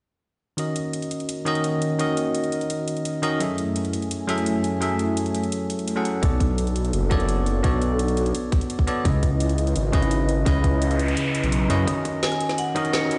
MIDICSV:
0, 0, Header, 1, 8, 480
1, 0, Start_track
1, 0, Tempo, 352941
1, 790, Time_signature, 4, 2, 24, 8
1, 17930, End_track
2, 0, Start_track
2, 0, Title_t, "Vibraphone"
2, 0, Program_c, 0, 11
2, 16630, Note_on_c, 0, 80, 106
2, 17108, Note_on_c, 0, 78, 94
2, 17125, Note_off_c, 0, 80, 0
2, 17556, Note_off_c, 0, 78, 0
2, 17586, Note_on_c, 0, 73, 85
2, 17930, Note_off_c, 0, 73, 0
2, 17930, End_track
3, 0, Start_track
3, 0, Title_t, "Tine electric piano"
3, 0, Program_c, 1, 4
3, 776, Note_on_c, 1, 51, 70
3, 785, Note_on_c, 1, 61, 64
3, 791, Note_on_c, 1, 66, 66
3, 800, Note_on_c, 1, 70, 65
3, 808, Note_on_c, 1, 75, 77
3, 1064, Control_c, 1, 64, 127
3, 1955, Note_off_c, 1, 51, 0
3, 1959, Note_off_c, 1, 61, 0
3, 1963, Note_off_c, 1, 66, 0
3, 1967, Note_off_c, 1, 70, 0
3, 1971, Note_off_c, 1, 75, 0
3, 1976, Note_on_c, 1, 51, 92
3, 1985, Note_on_c, 1, 61, 86
3, 1993, Note_on_c, 1, 66, 84
3, 2001, Note_on_c, 1, 70, 83
3, 2009, Note_on_c, 1, 75, 102
3, 2675, Note_off_c, 1, 51, 0
3, 2679, Note_off_c, 1, 61, 0
3, 2683, Note_off_c, 1, 66, 0
3, 2687, Note_off_c, 1, 70, 0
3, 2691, Note_off_c, 1, 75, 0
3, 2697, Note_on_c, 1, 51, 83
3, 2704, Note_on_c, 1, 61, 75
3, 2712, Note_on_c, 1, 66, 73
3, 2720, Note_on_c, 1, 70, 72
3, 2729, Note_on_c, 1, 75, 90
3, 4355, Note_off_c, 1, 51, 0
3, 4359, Note_off_c, 1, 61, 0
3, 4363, Note_off_c, 1, 66, 0
3, 4367, Note_off_c, 1, 70, 0
3, 4371, Note_off_c, 1, 75, 0
3, 4381, Note_on_c, 1, 51, 91
3, 4385, Note_on_c, 1, 61, 80
3, 4390, Note_on_c, 1, 66, 81
3, 4393, Note_on_c, 1, 70, 86
3, 4397, Note_on_c, 1, 75, 100
3, 4597, Note_off_c, 1, 51, 0
3, 4600, Note_off_c, 1, 61, 0
3, 4602, Note_off_c, 1, 66, 0
3, 4604, Note_off_c, 1, 70, 0
3, 4606, Note_off_c, 1, 75, 0
3, 4614, Note_on_c, 1, 54, 69
3, 4622, Note_on_c, 1, 61, 67
3, 4630, Note_on_c, 1, 68, 66
3, 4638, Note_on_c, 1, 69, 66
3, 4647, Note_on_c, 1, 76, 79
3, 4650, Control_c, 1, 64, 0
3, 4910, Control_c, 1, 64, 127
3, 5794, Note_off_c, 1, 54, 0
3, 5798, Note_off_c, 1, 61, 0
3, 5802, Note_off_c, 1, 68, 0
3, 5806, Note_off_c, 1, 69, 0
3, 5810, Note_off_c, 1, 76, 0
3, 5813, Note_on_c, 1, 54, 93
3, 5821, Note_on_c, 1, 61, 86
3, 5829, Note_on_c, 1, 68, 88
3, 5838, Note_on_c, 1, 69, 89
3, 5846, Note_on_c, 1, 76, 101
3, 6513, Note_off_c, 1, 54, 0
3, 6517, Note_off_c, 1, 61, 0
3, 6521, Note_off_c, 1, 68, 0
3, 6526, Note_off_c, 1, 69, 0
3, 6530, Note_off_c, 1, 76, 0
3, 6533, Note_on_c, 1, 54, 83
3, 6540, Note_on_c, 1, 61, 77
3, 6549, Note_on_c, 1, 68, 74
3, 6557, Note_on_c, 1, 69, 73
3, 6565, Note_on_c, 1, 76, 89
3, 8079, Note_off_c, 1, 54, 0
3, 8083, Note_off_c, 1, 61, 0
3, 8087, Note_off_c, 1, 68, 0
3, 8091, Note_off_c, 1, 69, 0
3, 8096, Note_off_c, 1, 76, 0
3, 8103, Note_on_c, 1, 54, 87
3, 8107, Note_on_c, 1, 61, 79
3, 8110, Note_on_c, 1, 68, 77
3, 8114, Note_on_c, 1, 69, 80
3, 8119, Note_on_c, 1, 78, 98
3, 8437, Note_off_c, 1, 54, 0
3, 8440, Note_off_c, 1, 61, 0
3, 8441, Note_off_c, 1, 68, 0
3, 8443, Note_off_c, 1, 69, 0
3, 8446, Note_off_c, 1, 78, 0
3, 8452, Note_on_c, 1, 59, 71
3, 8461, Note_on_c, 1, 66, 67
3, 8470, Note_on_c, 1, 69, 69
3, 8477, Note_on_c, 1, 73, 62
3, 8484, Note_on_c, 1, 74, 79
3, 8487, Control_c, 1, 64, 0
3, 8700, Control_c, 1, 64, 127
3, 9633, Note_off_c, 1, 59, 0
3, 9638, Note_off_c, 1, 66, 0
3, 9642, Note_off_c, 1, 69, 0
3, 9645, Note_off_c, 1, 73, 0
3, 9649, Note_off_c, 1, 74, 0
3, 9654, Note_on_c, 1, 59, 93
3, 9661, Note_on_c, 1, 66, 88
3, 9669, Note_on_c, 1, 69, 89
3, 9678, Note_on_c, 1, 73, 89
3, 9685, Note_on_c, 1, 74, 105
3, 10354, Note_off_c, 1, 59, 0
3, 10357, Note_off_c, 1, 66, 0
3, 10362, Note_off_c, 1, 69, 0
3, 10366, Note_off_c, 1, 73, 0
3, 10370, Note_off_c, 1, 74, 0
3, 10376, Note_on_c, 1, 59, 81
3, 10384, Note_on_c, 1, 66, 76
3, 10392, Note_on_c, 1, 69, 74
3, 10400, Note_on_c, 1, 73, 75
3, 10408, Note_on_c, 1, 74, 91
3, 12035, Note_off_c, 1, 59, 0
3, 12039, Note_off_c, 1, 66, 0
3, 12043, Note_off_c, 1, 69, 0
3, 12047, Note_off_c, 1, 73, 0
3, 12051, Note_off_c, 1, 74, 0
3, 12063, Note_on_c, 1, 59, 93
3, 12066, Note_on_c, 1, 66, 84
3, 12071, Note_on_c, 1, 69, 83
3, 12074, Note_on_c, 1, 73, 84
3, 12079, Note_on_c, 1, 74, 99
3, 12278, Note_off_c, 1, 59, 0
3, 12280, Note_off_c, 1, 66, 0
3, 12282, Note_off_c, 1, 69, 0
3, 12284, Note_off_c, 1, 73, 0
3, 12286, Note_off_c, 1, 74, 0
3, 12294, Note_on_c, 1, 49, 73
3, 12302, Note_on_c, 1, 61, 66
3, 12310, Note_on_c, 1, 64, 69
3, 12318, Note_on_c, 1, 71, 66
3, 12326, Note_on_c, 1, 75, 82
3, 12327, Control_c, 1, 64, 0
3, 12583, Control_c, 1, 64, 127
3, 13474, Note_off_c, 1, 49, 0
3, 13478, Note_off_c, 1, 61, 0
3, 13482, Note_off_c, 1, 64, 0
3, 13486, Note_off_c, 1, 71, 0
3, 13490, Note_off_c, 1, 75, 0
3, 13494, Note_on_c, 1, 49, 95
3, 13502, Note_on_c, 1, 61, 84
3, 13510, Note_on_c, 1, 64, 85
3, 13518, Note_on_c, 1, 71, 89
3, 13527, Note_on_c, 1, 75, 103
3, 14194, Note_off_c, 1, 49, 0
3, 14198, Note_off_c, 1, 61, 0
3, 14202, Note_off_c, 1, 64, 0
3, 14206, Note_off_c, 1, 71, 0
3, 14210, Note_off_c, 1, 75, 0
3, 14213, Note_on_c, 1, 49, 87
3, 14220, Note_on_c, 1, 61, 76
3, 14229, Note_on_c, 1, 64, 78
3, 14237, Note_on_c, 1, 71, 78
3, 14245, Note_on_c, 1, 75, 95
3, 15874, Note_off_c, 1, 49, 0
3, 15877, Note_off_c, 1, 61, 0
3, 15882, Note_off_c, 1, 64, 0
3, 15886, Note_off_c, 1, 71, 0
3, 15889, Note_off_c, 1, 75, 0
3, 15903, Note_on_c, 1, 49, 92
3, 15907, Note_on_c, 1, 61, 87
3, 15910, Note_on_c, 1, 64, 84
3, 15915, Note_on_c, 1, 71, 88
3, 15919, Note_on_c, 1, 75, 101
3, 16118, Note_off_c, 1, 49, 0
3, 16120, Note_off_c, 1, 61, 0
3, 16122, Note_off_c, 1, 64, 0
3, 16124, Note_off_c, 1, 71, 0
3, 16126, Note_off_c, 1, 75, 0
3, 16135, Note_on_c, 1, 51, 71
3, 16144, Note_on_c, 1, 61, 68
3, 16152, Note_on_c, 1, 66, 69
3, 16159, Note_on_c, 1, 70, 64
3, 16168, Note_on_c, 1, 75, 79
3, 16170, Control_c, 1, 64, 0
3, 16433, Control_c, 1, 64, 127
3, 17314, Note_off_c, 1, 51, 0
3, 17319, Note_off_c, 1, 61, 0
3, 17323, Note_off_c, 1, 66, 0
3, 17327, Note_off_c, 1, 70, 0
3, 17331, Note_off_c, 1, 75, 0
3, 17334, Note_on_c, 1, 51, 97
3, 17342, Note_on_c, 1, 61, 91
3, 17351, Note_on_c, 1, 66, 89
3, 17358, Note_on_c, 1, 70, 92
3, 17366, Note_on_c, 1, 75, 105
3, 17930, Note_off_c, 1, 51, 0
3, 17930, Note_off_c, 1, 61, 0
3, 17930, Note_off_c, 1, 66, 0
3, 17930, Note_off_c, 1, 70, 0
3, 17930, Note_off_c, 1, 75, 0
3, 17930, End_track
4, 0, Start_track
4, 0, Title_t, "Analog synth pad"
4, 0, Program_c, 2, 89
4, 794, Note_on_c, 2, 51, 75
4, 795, Note_on_c, 2, 58, 73
4, 795, Note_on_c, 2, 66, 90
4, 796, Note_on_c, 2, 61, 68
4, 4594, Note_off_c, 2, 51, 0
4, 4594, Note_off_c, 2, 58, 0
4, 4594, Note_off_c, 2, 66, 0
4, 4595, Note_off_c, 2, 61, 0
4, 4633, Note_on_c, 2, 57, 70
4, 4633, Note_on_c, 2, 64, 74
4, 4634, Note_on_c, 2, 42, 77
4, 4634, Note_on_c, 2, 80, 89
4, 8433, Note_off_c, 2, 64, 0
4, 8434, Note_off_c, 2, 42, 0
4, 8434, Note_off_c, 2, 57, 0
4, 8434, Note_off_c, 2, 80, 0
4, 8471, Note_on_c, 2, 62, 74
4, 8471, Note_on_c, 2, 69, 87
4, 12272, Note_off_c, 2, 69, 0
4, 12273, Note_off_c, 2, 62, 0
4, 12312, Note_on_c, 2, 64, 76
4, 12314, Note_on_c, 2, 71, 84
4, 12314, Note_on_c, 2, 75, 78
4, 16113, Note_off_c, 2, 64, 0
4, 16114, Note_off_c, 2, 71, 0
4, 16114, Note_off_c, 2, 75, 0
4, 16151, Note_on_c, 2, 51, 81
4, 16151, Note_on_c, 2, 61, 74
4, 16151, Note_on_c, 2, 66, 70
4, 16151, Note_on_c, 2, 70, 86
4, 17930, Note_off_c, 2, 51, 0
4, 17930, Note_off_c, 2, 61, 0
4, 17930, Note_off_c, 2, 66, 0
4, 17930, Note_off_c, 2, 70, 0
4, 17930, End_track
5, 0, Start_track
5, 0, Title_t, "Detuned saw bass"
5, 0, Program_c, 3, 39
5, 8469, Note_on_c, 3, 35, 92
5, 9411, Note_off_c, 3, 35, 0
5, 9430, Note_on_c, 3, 30, 98
5, 10372, Note_off_c, 3, 30, 0
5, 10389, Note_on_c, 3, 35, 94
5, 11331, Note_off_c, 3, 35, 0
5, 12310, Note_on_c, 3, 37, 99
5, 13252, Note_off_c, 3, 37, 0
5, 13269, Note_on_c, 3, 32, 91
5, 14211, Note_off_c, 3, 32, 0
5, 14229, Note_on_c, 3, 37, 94
5, 15171, Note_off_c, 3, 37, 0
5, 15553, Note_on_c, 3, 35, 99
5, 15892, Note_off_c, 3, 35, 0
5, 15910, Note_on_c, 3, 42, 94
5, 16127, Note_off_c, 3, 42, 0
5, 17930, End_track
6, 0, Start_track
6, 0, Title_t, "Noise sweep"
6, 0, Program_c, 4, 103
6, 14230, Note_on_c, 4, 60, 77
6, 16150, Note_off_c, 4, 60, 0
6, 17930, End_track
7, 0, Start_track
7, 0, Title_t, "Riser"
7, 0, Program_c, 5, 103
7, 16151, Note_on_c, 5, 60, 81
7, 17930, Note_off_c, 5, 60, 0
7, 17930, End_track
8, 0, Start_track
8, 0, Title_t, "Drums"
8, 790, Note_on_c, 9, 42, 93
8, 926, Note_off_c, 9, 42, 0
8, 1030, Note_on_c, 9, 42, 68
8, 1166, Note_off_c, 9, 42, 0
8, 1271, Note_on_c, 9, 42, 86
8, 1393, Note_off_c, 9, 42, 0
8, 1393, Note_on_c, 9, 42, 36
8, 1510, Note_off_c, 9, 42, 0
8, 1510, Note_on_c, 9, 42, 67
8, 1633, Note_off_c, 9, 42, 0
8, 1633, Note_on_c, 9, 42, 36
8, 1751, Note_off_c, 9, 42, 0
8, 1751, Note_on_c, 9, 42, 98
8, 1887, Note_off_c, 9, 42, 0
8, 1992, Note_on_c, 9, 42, 66
8, 2113, Note_off_c, 9, 42, 0
8, 2113, Note_on_c, 9, 42, 35
8, 2231, Note_off_c, 9, 42, 0
8, 2231, Note_on_c, 9, 42, 80
8, 2367, Note_off_c, 9, 42, 0
8, 2471, Note_on_c, 9, 42, 66
8, 2607, Note_off_c, 9, 42, 0
8, 2712, Note_on_c, 9, 42, 89
8, 2848, Note_off_c, 9, 42, 0
8, 2952, Note_on_c, 9, 42, 64
8, 3088, Note_off_c, 9, 42, 0
8, 3190, Note_on_c, 9, 42, 83
8, 3313, Note_off_c, 9, 42, 0
8, 3313, Note_on_c, 9, 42, 36
8, 3431, Note_off_c, 9, 42, 0
8, 3431, Note_on_c, 9, 42, 64
8, 3553, Note_off_c, 9, 42, 0
8, 3553, Note_on_c, 9, 42, 36
8, 3671, Note_off_c, 9, 42, 0
8, 3671, Note_on_c, 9, 42, 95
8, 3807, Note_off_c, 9, 42, 0
8, 3911, Note_on_c, 9, 42, 66
8, 4034, Note_off_c, 9, 42, 0
8, 4034, Note_on_c, 9, 42, 34
8, 4151, Note_off_c, 9, 42, 0
8, 4151, Note_on_c, 9, 42, 85
8, 4287, Note_off_c, 9, 42, 0
8, 4391, Note_on_c, 9, 42, 63
8, 4527, Note_off_c, 9, 42, 0
8, 4630, Note_on_c, 9, 42, 88
8, 4766, Note_off_c, 9, 42, 0
8, 4870, Note_on_c, 9, 42, 60
8, 5006, Note_off_c, 9, 42, 0
8, 5111, Note_on_c, 9, 42, 84
8, 5232, Note_off_c, 9, 42, 0
8, 5232, Note_on_c, 9, 42, 34
8, 5350, Note_off_c, 9, 42, 0
8, 5350, Note_on_c, 9, 42, 63
8, 5472, Note_off_c, 9, 42, 0
8, 5472, Note_on_c, 9, 42, 32
8, 5590, Note_off_c, 9, 42, 0
8, 5590, Note_on_c, 9, 42, 92
8, 5726, Note_off_c, 9, 42, 0
8, 5831, Note_on_c, 9, 42, 63
8, 5953, Note_off_c, 9, 42, 0
8, 5953, Note_on_c, 9, 42, 34
8, 6070, Note_off_c, 9, 42, 0
8, 6070, Note_on_c, 9, 42, 81
8, 6206, Note_off_c, 9, 42, 0
8, 6311, Note_on_c, 9, 42, 62
8, 6447, Note_off_c, 9, 42, 0
8, 6550, Note_on_c, 9, 42, 86
8, 6686, Note_off_c, 9, 42, 0
8, 6790, Note_on_c, 9, 42, 57
8, 6926, Note_off_c, 9, 42, 0
8, 7031, Note_on_c, 9, 42, 79
8, 7153, Note_off_c, 9, 42, 0
8, 7153, Note_on_c, 9, 42, 34
8, 7270, Note_off_c, 9, 42, 0
8, 7270, Note_on_c, 9, 42, 62
8, 7391, Note_off_c, 9, 42, 0
8, 7391, Note_on_c, 9, 42, 34
8, 7509, Note_off_c, 9, 42, 0
8, 7509, Note_on_c, 9, 42, 85
8, 7645, Note_off_c, 9, 42, 0
8, 7751, Note_on_c, 9, 42, 62
8, 7873, Note_off_c, 9, 42, 0
8, 7873, Note_on_c, 9, 42, 33
8, 7991, Note_off_c, 9, 42, 0
8, 7991, Note_on_c, 9, 42, 78
8, 8127, Note_off_c, 9, 42, 0
8, 8230, Note_on_c, 9, 42, 61
8, 8366, Note_off_c, 9, 42, 0
8, 8468, Note_on_c, 9, 36, 106
8, 8470, Note_on_c, 9, 42, 88
8, 8604, Note_off_c, 9, 36, 0
8, 8606, Note_off_c, 9, 42, 0
8, 8708, Note_on_c, 9, 36, 58
8, 8710, Note_on_c, 9, 42, 61
8, 8844, Note_off_c, 9, 36, 0
8, 8846, Note_off_c, 9, 42, 0
8, 8950, Note_on_c, 9, 42, 79
8, 9072, Note_off_c, 9, 42, 0
8, 9072, Note_on_c, 9, 42, 35
8, 9190, Note_off_c, 9, 42, 0
8, 9190, Note_on_c, 9, 42, 60
8, 9311, Note_off_c, 9, 42, 0
8, 9311, Note_on_c, 9, 42, 34
8, 9429, Note_off_c, 9, 42, 0
8, 9429, Note_on_c, 9, 42, 88
8, 9565, Note_off_c, 9, 42, 0
8, 9668, Note_on_c, 9, 36, 101
8, 9669, Note_on_c, 9, 42, 62
8, 9791, Note_off_c, 9, 42, 0
8, 9791, Note_on_c, 9, 42, 33
8, 9804, Note_off_c, 9, 36, 0
8, 9909, Note_off_c, 9, 42, 0
8, 9909, Note_on_c, 9, 42, 77
8, 10045, Note_off_c, 9, 42, 0
8, 10150, Note_on_c, 9, 42, 60
8, 10286, Note_off_c, 9, 42, 0
8, 10389, Note_on_c, 9, 36, 108
8, 10390, Note_on_c, 9, 42, 93
8, 10525, Note_off_c, 9, 36, 0
8, 10526, Note_off_c, 9, 42, 0
8, 10629, Note_on_c, 9, 42, 63
8, 10765, Note_off_c, 9, 42, 0
8, 10870, Note_on_c, 9, 42, 82
8, 10993, Note_off_c, 9, 42, 0
8, 10993, Note_on_c, 9, 42, 35
8, 11112, Note_off_c, 9, 42, 0
8, 11112, Note_on_c, 9, 42, 63
8, 11234, Note_off_c, 9, 42, 0
8, 11234, Note_on_c, 9, 42, 35
8, 11351, Note_off_c, 9, 42, 0
8, 11351, Note_on_c, 9, 42, 92
8, 11487, Note_off_c, 9, 42, 0
8, 11590, Note_on_c, 9, 36, 97
8, 11592, Note_on_c, 9, 42, 60
8, 11713, Note_off_c, 9, 42, 0
8, 11713, Note_on_c, 9, 42, 33
8, 11726, Note_off_c, 9, 36, 0
8, 11830, Note_off_c, 9, 42, 0
8, 11830, Note_on_c, 9, 42, 76
8, 11952, Note_on_c, 9, 36, 58
8, 11966, Note_off_c, 9, 42, 0
8, 12070, Note_on_c, 9, 42, 63
8, 12088, Note_off_c, 9, 36, 0
8, 12206, Note_off_c, 9, 42, 0
8, 12310, Note_on_c, 9, 36, 109
8, 12310, Note_on_c, 9, 42, 96
8, 12446, Note_off_c, 9, 36, 0
8, 12446, Note_off_c, 9, 42, 0
8, 12550, Note_on_c, 9, 36, 56
8, 12550, Note_on_c, 9, 42, 66
8, 12686, Note_off_c, 9, 36, 0
8, 12686, Note_off_c, 9, 42, 0
8, 12789, Note_on_c, 9, 42, 90
8, 12912, Note_off_c, 9, 42, 0
8, 12912, Note_on_c, 9, 42, 35
8, 13030, Note_off_c, 9, 42, 0
8, 13030, Note_on_c, 9, 42, 63
8, 13152, Note_off_c, 9, 42, 0
8, 13152, Note_on_c, 9, 42, 35
8, 13269, Note_off_c, 9, 42, 0
8, 13269, Note_on_c, 9, 42, 93
8, 13405, Note_off_c, 9, 42, 0
8, 13509, Note_on_c, 9, 36, 96
8, 13510, Note_on_c, 9, 42, 67
8, 13632, Note_off_c, 9, 42, 0
8, 13632, Note_on_c, 9, 42, 36
8, 13645, Note_off_c, 9, 36, 0
8, 13750, Note_off_c, 9, 42, 0
8, 13750, Note_on_c, 9, 42, 80
8, 13886, Note_off_c, 9, 42, 0
8, 13990, Note_on_c, 9, 42, 65
8, 14126, Note_off_c, 9, 42, 0
8, 14229, Note_on_c, 9, 36, 112
8, 14230, Note_on_c, 9, 42, 98
8, 14365, Note_off_c, 9, 36, 0
8, 14366, Note_off_c, 9, 42, 0
8, 14469, Note_on_c, 9, 36, 56
8, 14471, Note_on_c, 9, 42, 65
8, 14605, Note_off_c, 9, 36, 0
8, 14607, Note_off_c, 9, 42, 0
8, 14711, Note_on_c, 9, 42, 94
8, 14834, Note_off_c, 9, 42, 0
8, 14834, Note_on_c, 9, 42, 38
8, 14952, Note_off_c, 9, 42, 0
8, 14952, Note_on_c, 9, 42, 68
8, 15073, Note_off_c, 9, 42, 0
8, 15073, Note_on_c, 9, 42, 38
8, 15190, Note_off_c, 9, 42, 0
8, 15190, Note_on_c, 9, 42, 99
8, 15326, Note_off_c, 9, 42, 0
8, 15431, Note_on_c, 9, 42, 68
8, 15552, Note_off_c, 9, 42, 0
8, 15552, Note_on_c, 9, 42, 38
8, 15670, Note_off_c, 9, 42, 0
8, 15670, Note_on_c, 9, 42, 87
8, 15806, Note_off_c, 9, 42, 0
8, 15910, Note_on_c, 9, 42, 67
8, 16046, Note_off_c, 9, 42, 0
8, 16149, Note_on_c, 9, 36, 110
8, 16151, Note_on_c, 9, 42, 100
8, 16285, Note_off_c, 9, 36, 0
8, 16287, Note_off_c, 9, 42, 0
8, 16389, Note_on_c, 9, 42, 68
8, 16390, Note_on_c, 9, 36, 60
8, 16525, Note_off_c, 9, 42, 0
8, 16526, Note_off_c, 9, 36, 0
8, 16630, Note_on_c, 9, 38, 109
8, 16630, Note_on_c, 9, 42, 94
8, 16752, Note_off_c, 9, 42, 0
8, 16752, Note_on_c, 9, 37, 35
8, 16752, Note_on_c, 9, 42, 37
8, 16766, Note_off_c, 9, 38, 0
8, 16871, Note_off_c, 9, 42, 0
8, 16871, Note_on_c, 9, 42, 70
8, 16888, Note_off_c, 9, 37, 0
8, 16992, Note_off_c, 9, 42, 0
8, 16992, Note_on_c, 9, 38, 36
8, 16992, Note_on_c, 9, 42, 39
8, 17110, Note_off_c, 9, 42, 0
8, 17110, Note_on_c, 9, 42, 97
8, 17128, Note_off_c, 9, 38, 0
8, 17246, Note_off_c, 9, 42, 0
8, 17349, Note_on_c, 9, 36, 102
8, 17351, Note_on_c, 9, 42, 70
8, 17473, Note_off_c, 9, 42, 0
8, 17473, Note_on_c, 9, 42, 38
8, 17485, Note_off_c, 9, 36, 0
8, 17591, Note_off_c, 9, 42, 0
8, 17591, Note_on_c, 9, 38, 107
8, 17591, Note_on_c, 9, 42, 85
8, 17727, Note_off_c, 9, 38, 0
8, 17727, Note_off_c, 9, 42, 0
8, 17831, Note_on_c, 9, 42, 66
8, 17930, Note_off_c, 9, 42, 0
8, 17930, End_track
0, 0, End_of_file